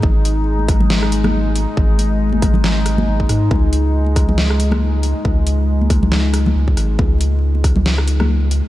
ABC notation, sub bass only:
X:1
M:4/4
L:1/8
Q:"Swing 16ths" 1/4=138
K:C#mix
V:1 name="Sub bass" clef=bass
G,,,6- G,,, z | G,,,6 G,,, G,, | C,,6- C,, z | C,,6 C,, G,,, |
C,,6- C,, z |]